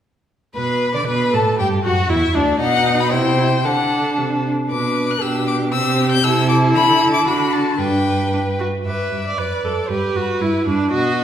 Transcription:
0.55 B2 B4 B5
0.94 D3 D5 D6
1.07 B2 B4 B5
1.33 A2 A4 A5
1.58 G2 G4 G5
1.84 F#2 F#4 F#5
2.09 E2 E4 E5
2.35 D2 D4 D5
2.59 B2 D#4 D#5 F#5
3.00 B5
3.11 C3 E4 C5 G5
3.38 E4
3.64 D3 D4 A4 F#5
4.18 C3
4.69 B2 D4 B4 D6
5.11 F#6
5.21 B2 D4 G4 E6
5.48 D6
5.72 C3 C4 G4 E6
6.12 G6
6.24 C3 E4 A4 E6
6.49 D6
6.74 D3 B5
7.14 D6
7.26 D3 D4 F#4 B5
7.53 A5
7.79 G2 D4 B4 G5
8.33 D4
8.60 F#4
8.86 G2 B4 E5 D6
9.12 G2 D6
9.27 D5
9.37 F#2 B4 D5 D6
9.64 F#2 A4 D6
9.89 G2 G4 B4 B5
10.15 G2 F#4 B5
10.40 G2 E4 B5
10.66 G2 D4 B5
10.91 B2 F#4 D#5 D#6

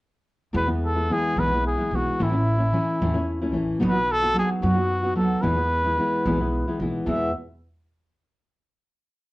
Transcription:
0.53 E2 B2 E3 G#3 B3 E4 B4
0.67 E3 G#3 B3 E4
0.86 A4
0.95 E3 G#3 B3 E4
1.10 E3 G#3 B3 E4 G#4
1.36 B1 E2 B2 E3 G#3 B3 E4 B4
1.54 E3 G#3 B3 E4
1.67 G#4
1.78 E3 G#3 B3 E4
1.91 B1 E3 G#3 B3 E4
1.95 F#4
2.19 A1 A2 E3 A3 C#4 E4
2.30 A3 C#4 E4
2.58 A3 C#4 E4
2.72 E3 A3 C#4 E4
3.01 E2 A2 E3 A3 C#4 E4
3.14 A3 C#4 E4
3.42 A3 C#4 E4
3.52 A1 E3 A3 C#4 E4
3.80 B1 B2 F#3 B3 D#4 F#4
3.85 B4
3.93 B3 D#4 F#4
4.12 A4
4.22 B3 D#4 F#4
4.34 F#3 B3 D#4 F#4
4.39 G#4
4.62 F#2 B2 F#3 B3 D#4 F#4
4.75 B3 D#4 F#4
5.03 B3 D#4 F#4
5.15 D#2 F#3 B3 D#4 F#4 A4
5.42 E2 B2 E3 G#3 B3 E4 B4
5.56 E3 G#3 B3 E4
5.84 E3 G#3 B3 E4
5.97 E3 G#3 B3 E4
6.25 B1 E2 B2 E3 G#3 B3 E4
6.40 E3 G#3 B3 E4
6.68 E3 G#3 B3 E4
6.80 B1 E3 G#3 B3 E4
7.06 E2 B2 E3 G#3 B3 E4 E5

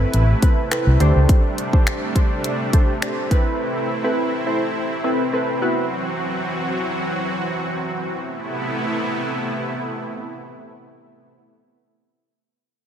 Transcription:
Already playing: C3 A3 C4 E4 A4 B4
0.14 A1, closed hi-hat
0.42 C4 E4 A4 B4, kick, closed hi-hat
0.71 C4 E4 A4 B4, finger snap, closed hi-hat
0.87 C2
1.00 D2 G3 D4 G4 A4 C5, closed hi-hat
1.16 C#2
1.29 kick, closed hi-hat
1.58 closed hi-hat
1.73 D4 G4 A4 C5, kick
1.87 finger snap, closed hi-hat
2.15 D4 G4 A4 C5, kick, closed hi-hat
2.44 closed hi-hat
2.73 D4 G4 A4 C5, kick, closed hi-hat
3.02 D4 G4 A4 C5, finger snap, closed hi-hat
3.31 C4 E4 A4 B4, kick, closed hi-hat
4.04 C4 E4 A4 B4
4.46 C4 E4 A4 C5
5.04 C4 E4 A4 B4
5.33 C4 E4 A4 B4
5.62 E3 F#3 B3 E4 F#4 B4
8.21 C3 A3 B3 E4

